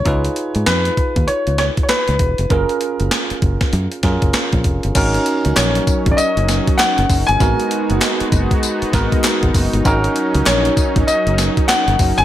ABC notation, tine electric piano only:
X:1
M:4/4
L:1/8
Q:"Swing 16ths" 1/4=98
K:D#m
V:1 name="Tine electric piano"
[DEGB]8 | [CEGA]4- [CEGA] [CEGA]3 | [CDFA]8 | [B,DFA]4- [B,DFA] [B,DFA]3 |
[CDFA]8 |]